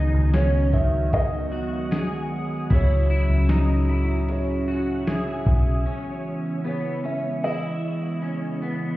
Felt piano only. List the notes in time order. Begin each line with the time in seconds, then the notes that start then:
0.35 C#5
0.74 E5
1.14 D#5
2.72 C#5
4.29 C#5
6.66 C#5
7.05 E5
7.44 D#5